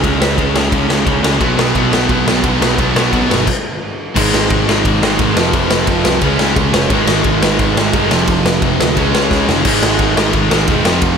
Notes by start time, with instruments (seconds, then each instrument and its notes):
0.03 picked electric bass C#2, distorted electric guitar C#3 G#3 C#4, kick, ride
0.19 picked electric bass C#2, distorted electric guitar C#3 G#3 C#4, snare
0.38 picked electric bass C#2, distorted electric guitar C#3 G#3 C#4, kick, ride
0.55 picked electric bass C#2, distorted electric guitar C#3 G#3 C#4, snare
0.72 picked electric bass C#2, distorted electric guitar C#3 G#3 C#4, kick, ride
0.89 picked electric bass C#2, distorted electric guitar C#3 G#3 C#4, snare
1.06 picked electric bass C#2, distorted electric guitar C#3 G#3 C#4, kick, ride
1.23 picked electric bass C#2, distorted electric guitar C#3 G#3 C#4, snare
1.40 picked electric bass B1, distorted electric guitar B2 F#3 B3, kick, ride
1.58 picked electric bass B1, distorted electric guitar B2 F#3 B3, snare
1.75 picked electric bass B1, distorted electric guitar B2 F#3 B3, kick, ride
1.92 picked electric bass B1, distorted electric guitar B2 F#3 B3, snare
2.09 picked electric bass B1, distorted electric guitar B2 F#3 B3, kick, ride
2.26 picked electric bass B1, distorted electric guitar B2 F#3 B3, snare
2.43 picked electric bass B1, distorted electric guitar B2 F#3 B3, kick, ride
2.61 picked electric bass B1, distorted electric guitar B2 F#3 B3, snare
2.78 picked electric bass B1, distorted electric guitar B2 F#3 B3, kick, ride
2.95 picked electric bass B1, distorted electric guitar B2 F#3 B3, snare
3.13 picked electric bass B1, distorted electric guitar B2 F#3 B3, kick, ride
3.31 picked electric bass G1, distorted electric guitar B2 F#3 B3, snare
3.47 kick, crash
4.15 picked electric bass G#1, distorted electric guitar G#2 D#3 G#3, kick, crash
4.33 picked electric bass G#1, snare
4.50 picked electric bass G#1, kick, ride
4.67 picked electric bass G#1, distorted electric guitar G#2 D#3 G#3, snare
4.85 picked electric bass G#1, kick, ride
5.01 picked electric bass G#1, overdriven electric guitar G#2 D#3 G#3, snare
5.19 picked electric bass G#1, distorted electric guitar G#2 D#3 G#3, kick, ride
5.36 picked electric bass F1, distorted electric guitar F2 C3 F3, snare
5.53 picked electric bass F1, kick, ride
5.71 picked electric bass F1, snare
5.87 picked electric bass F1, distorted electric guitar F2 C3 F3, kick, ride
6.05 picked electric bass C2, snare
6.21 picked electric bass C#2, distorted electric guitar C#3 G#3 C#4, kick, ride
6.39 picked electric bass C#2, snare
6.56 picked electric bass C#2, kick, ride
6.73 picked electric bass F1, distorted electric guitar C#3 G#3 C#4, snare
6.90 picked electric bass G#1, distorted electric guitar G#2 D#3 G#3, kick, ride
7.07 picked electric bass G#1, snare
7.24 picked electric bass G#1, kick, ride
7.42 picked electric bass G#1, distorted electric guitar G#2 D#3 G#3, snare
7.59 picked electric bass G#1, kick, ride
7.76 picked electric bass G#1, overdriven electric guitar D#3 G#3, snare
7.80 overdriven electric guitar G#2
7.93 picked electric bass G1, distorted electric guitar G#2 D#3 G#3, kick, ride
8.11 picked electric bass F1, distorted electric guitar F2 C3 F3, snare
8.27 picked electric bass F1, kick, ride
8.45 picked electric bass F1, snare
8.62 picked electric bass F1, distorted electric guitar F2 C3 F3, kick, ride
8.80 picked electric bass D2, snare
8.96 picked electric bass C#2, distorted electric guitar C#3 G#3 C#4, kick, ride
9.14 picked electric bass C#2, snare
9.31 picked electric bass C#2, kick, snare
9.48 picked electric bass F1, distorted electric guitar C#3 G#3 C#4, snare
9.65 picked electric bass G#1, distorted electric guitar G#2 D#3 G#3, kick, crash
9.82 picked electric bass G#1, snare
9.99 picked electric bass G#1, kick, ride
10.16 picked electric bass G#1, distorted electric guitar G#2 D#3 G#3, snare
10.33 picked electric bass G#1, kick, ride
10.50 picked electric bass G#1, overdriven electric guitar G#2 D#3 G#3, snare
10.67 picked electric bass E1, distorted electric guitar G#2 D#3 G#3, kick, ride
10.84 picked electric bass F1, distorted electric guitar F2 C3 F3, snare
11.02 picked electric bass F1, kick, ride